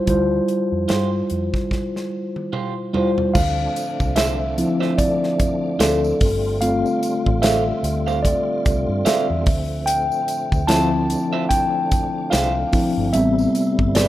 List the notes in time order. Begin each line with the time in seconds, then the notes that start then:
Already playing: G3 E4 F4 C5
0.06 D2 G3 E4 F4 C5, kick, closed hi-hat
0.48 closed hi-hat
0.72 F2
0.88 G2 F4 G4 C5, snare, closed hi-hat
1.30 F2, closed hi-hat
1.54 kick, snare
1.71 kick, snare
1.96 snare
2.36 high tom
2.53 F4 G4 C5, mid tom
2.93 G3 E4 F4 G4 C5, floor tom
3.18 floor tom
3.34 D2 D3 F3 A3 C4 D4 F5, kick, crash, tambourine
3.76 closed hi-hat, tambourine
4.00 C2, kick, tambourine
4.16 F4 C5 E5, snare, closed hi-hat, tambourine
4.58 F3 C4 E4, closed hi-hat, tambourine
4.80 F4 C5 E5, snare
4.98 D5, kick, closed hi-hat, tambourine
5.23 snare
5.40 kick, closed hi-hat, tambourine
5.79 D2 F4 A4 C5 E5, snare, closed hi-hat, tambourine
6.04 tambourine
6.21 G1 G3 F4, kick, open hi-hat, tambourine
6.61 A3 C4 F4 F5, closed hi-hat, tambourine
6.86 tambourine
7.03 closed hi-hat, tambourine
7.26 A1, kick
7.42 A4 C5 E5 F5, snare, closed hi-hat, tambourine
7.83 D2, closed hi-hat, tambourine
8.07 A4 C5 F5, tambourine
8.23 D5, kick, closed hi-hat, tambourine
8.65 C2, kick, closed hi-hat, tambourine
8.88 G2
9.05 A4 C5 E5 F5, muted fingered electric bass stroke, snare, closed hi-hat, tambourine
9.30 E2
9.46 D2 F3, kick, open hi-hat, tambourine
9.86 G5, closed hi-hat, tambourine
10.12 tambourine
10.28 closed hi-hat, tambourine
10.52 D2, kick, tambourine
10.67 F3 C4 E4 F4 C5 E5 A5, snare, closed hi-hat, tambourine
11.09 D4, closed hi-hat, tambourine
11.33 F4 C5 E5
11.49 G5, kick, closed hi-hat, tambourine
11.92 kick, closed hi-hat, tambourine
12.30 C2 F4 C5 E5 F5, snare, closed hi-hat, tambourine
12.72 F3 C4 E4, kick, open hi-hat, tambourine
12.97 G1
13.13 A1 C3 G3 B3 C4 E4 E5, closed hi-hat, tambourine
13.39 tambourine
13.55 closed hi-hat, tambourine
13.79 G1, kick
13.95 C4 G4 B4 D5, snare, closed hi-hat, tambourine